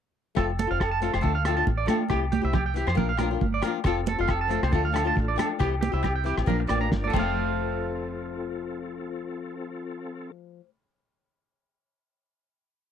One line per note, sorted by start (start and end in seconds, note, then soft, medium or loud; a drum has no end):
0.35 0.66 F1 medium
0.35 0.49 A3 medium
0.35 0.50 C4 medium
0.35 0.51 F4 medium
0.35 0.45 A4 medium
0.35 kick medium
0.35 cross-stick medium
0.35 muted conga soft
0.35 low agogo medium
0.59 0.67 A4 medium
0.59 closed hi-hat soft
0.59 muted conga soft
0.59 high conga medium
0.67 0.83 C4 soft
0.67 0.81 F4 medium
0.67 0.78 F5 medium
0.71 1.09 F1 medium
0.80 0.88 A4 medium
0.80 kick medium
0.80 cross-stick medium
0.80 low agogo medium
0.91 0.99 A5 medium
1.00 1.15 A3 medium
1.00 1.15 C4 medium
1.00 1.16 F4 medium
1.00 1.11 A4 medium
1.00 closed hi-hat soft
1.13 1.23 F1 medium
1.13 1.21 C5 medium
1.13 cross-stick medium
1.13 low agogo medium
1.21 1.62 D2 medium
1.21 1.36 F3 medium
1.21 1.36 A3 medium
1.21 1.37 D4 medium
1.21 1.37 F4 medium
1.21 1.31 A4 medium
1.21 kick medium
1.21 muted conga soft
1.35 1.42 F5 medium
1.45 1.57 F3 medium
1.45 1.58 A3 medium
1.45 1.57 D4 medium
1.45 1.55 F4 medium
1.45 1.54 A4 medium
1.45 cross-stick medium
1.45 closed hi-hat medium
1.45 low agogo medium
1.57 1.71 A3 soft
1.57 1.70 D4 medium
1.57 1.69 F4 medium
1.57 1.64 A5 medium
1.67 1.87 A1 medium
1.67 kick medium
1.67 high conga medium
1.77 1.85 D5 medium
1.86 2.01 F3 medium
1.86 2.02 A3 medium
1.86 2.02 D4 medium
1.86 2.03 F4 medium
1.86 1.96 A4 medium
1.86 cross-stick medium
1.86 closed hi-hat medium
1.86 muted conga soft
1.86 high conga medium
1.90 low agogo medium
2.08 2.40 C2 medium
2.08 2.24 C4 medium
2.08 2.24 E4 medium
2.08 2.19 G4 medium
2.08 2.24 G4 medium
2.08 muted nylon-string guitar stroke medium
2.08 kick medium
2.08 cross-stick medium
2.08 low agogo medium
2.32 2.41 G4 medium
2.32 closed hi-hat soft
2.32 muted conga soft
2.32 high conga loud
2.41 2.83 C2 medium
2.41 2.56 C4 soft
2.41 2.56 E4 soft
2.41 2.55 G4 medium
2.41 2.52 E5 medium
2.53 2.63 G4 medium
2.53 kick medium
2.53 cross-stick medium
2.53 low conga medium
2.53 low agogo medium
2.66 2.73 G5 medium
2.74 2.89 E3 medium
2.74 2.89 C4 medium
2.74 2.90 E4 medium
2.74 2.85 G4 medium
2.74 2.90 G4 medium
2.74 closed hi-hat soft
2.87 2.96 F2 medium
2.87 2.95 C5 medium
2.87 cross-stick medium
2.87 low agogo medium
2.95 3.36 A#1 medium
2.95 3.10 A#3 medium
2.95 3.11 D4 medium
2.95 3.11 F4 medium
2.95 3.06 A#4 medium
2.95 muted nylon-string guitar stroke medium
2.95 kick medium
2.95 muted conga soft
2.95 low conga medium
3.09 3.16 F5 medium
3.17 3.31 F3 medium
3.17 3.32 A#3 medium
3.17 3.31 D4 medium
3.17 3.28 A#4 medium
3.17 cross-stick medium
3.17 closed hi-hat soft
3.17 high conga medium
3.17 low agogo medium
3.22 3.29 F4 medium
3.31 3.45 A#3 soft
3.31 3.44 D4 medium
3.31 3.43 F4 medium
3.41 3.61 G1 medium
3.41 kick medium
3.41 high conga medium
3.54 3.61 D5 medium
3.62 3.77 F3 medium
3.62 3.78 A#3 medium
3.62 3.78 D4 medium
3.62 3.72 A#4 medium
3.62 cross-stick medium
3.62 closed hi-hat medium
3.62 muted conga soft
3.62 low agogo medium
3.67 3.79 F4 medium
3.84 4.15 F1 medium
3.84 3.99 F3 medium
3.84 4.72 C4 medium
3.84 4.00 C4 medium
3.84 5.58 F4 medium
3.84 4.00 F4 medium
3.84 4.70 A4 medium
3.84 3.94 A4 medium
3.84 muted nylon-string guitar stroke medium
3.84 kick medium
3.84 cross-stick medium
3.84 muted conga soft
3.84 low agogo medium
4.06 4.17 A4 medium
4.06 closed hi-hat soft
4.06 muted conga soft
4.06 high conga medium
4.18 4.58 F1 medium
4.18 4.33 A3 soft
4.18 4.31 F4 medium
4.18 4.27 F5 medium
4.28 4.39 A4 medium
4.28 kick medium
4.28 cross-stick medium
4.28 low agogo medium
4.41 4.48 A5 medium
4.48 4.63 F3 medium
4.48 4.64 A3 medium
4.48 4.64 C4 medium
4.48 4.64 F4 medium
4.48 4.59 A4 medium
4.48 closed hi-hat soft
4.63 4.72 C2 medium
4.63 4.71 C5 medium
4.63 cross-stick medium
4.63 low agogo medium
4.71 5.12 D2 medium
4.71 4.86 F3 medium
4.71 4.87 A3 medium
4.71 5.59 D4 medium
4.71 4.87 D4 medium
4.71 4.87 F4 medium
4.71 5.59 A4 medium
4.71 4.81 A4 medium
4.71 kick loud
4.71 muted conga soft
4.85 4.92 F5 medium
4.92 5.05 F3 medium
4.92 5.06 A3 medium
4.92 5.04 D4 medium
4.92 5.03 F4 medium
4.92 5.03 A4 medium
4.92 cross-stick medium
4.92 closed hi-hat medium
4.92 low agogo medium
5.04 5.19 A3 soft
5.04 5.18 D4 soft
5.04 5.18 F4 medium
5.04 5.14 A5 medium
5.16 5.36 A1 medium
5.16 kick medium
5.16 high conga medium
5.28 5.36 D5 medium
5.36 5.51 F3 medium
5.36 5.52 A3 medium
5.36 5.52 D4 medium
5.36 5.47 A4 medium
5.36 cross-stick medium
5.36 closed hi-hat medium
5.36 muted conga soft
5.36 high conga medium
5.36 low agogo medium
5.59 5.91 C2 medium
5.59 5.74 E3 medium
5.59 5.74 C4 medium
5.59 6.47 C4 medium
5.59 5.74 E4 medium
5.59 6.47 E4 medium
5.59 6.47 G4 medium
5.59 5.69 G4 medium
5.59 5.74 G4 medium
5.59 kick medium
5.59 cross-stick medium
5.59 muted conga soft
5.59 low agogo medium
5.81 5.90 G4 medium
5.81 closed hi-hat soft
5.81 muted conga soft
5.81 high conga medium
5.92 6.32 C2 medium
5.92 6.07 C4 soft
5.92 6.06 E4 soft
5.92 6.05 G4 medium
5.92 6.01 E5 medium
6.03 6.12 G4 medium
6.03 kick medium
6.03 cross-stick medium
6.03 low conga medium
6.03 low agogo medium
6.16 6.23 G5 medium
6.24 6.39 E3 medium
6.24 6.39 C4 medium
6.24 6.40 E4 medium
6.24 6.35 G4 medium
6.24 6.40 G4 medium
6.24 closed hi-hat soft
6.38 6.46 A1 medium
6.38 cross-stick medium
6.38 low agogo medium
6.46 6.67 A#1 medium
6.46 6.61 F3 medium
6.46 6.61 A#3 medium
6.46 7.13 D4 medium
6.46 6.62 D4 loud
6.46 7.11 F4 medium
6.46 7.12 A#4 medium
6.46 6.56 A#4 medium
6.46 kick medium
6.46 muted conga soft
6.46 low conga medium
6.60 muted clean electric guitar stroke medium
6.67 6.90 A1 medium
6.67 6.81 F3 medium
6.67 6.81 A#3 medium
6.67 6.78 D5 medium
6.67 cross-stick medium
6.67 closed hi-hat soft
6.67 high conga medium
6.67 low agogo medium
6.80 6.95 A#3 soft
6.80 6.94 D4 medium
6.80 6.89 A#5 medium
6.92 7.12 G1 medium
6.92 kick medium
6.92 snare soft
6.92 high conga medium
7.04 10.25 A4 medium
7.04 7.11 D5 medium
7.04 high conga medium
7.10 10.60 F3 medium
7.10 10.31 C4 medium
7.10 10.30 F4 medium
7.10 10.32 A4 medium
7.10 10.32 C5 medium
7.10 kick medium
7.10 crash medium
7.10 low agogo loud
7.14 10.32 F1 medium
7.14 10.64 A3 medium
7.14 muted conga medium
7.19 10.69 C4 medium
7.19 10.37 F5 medium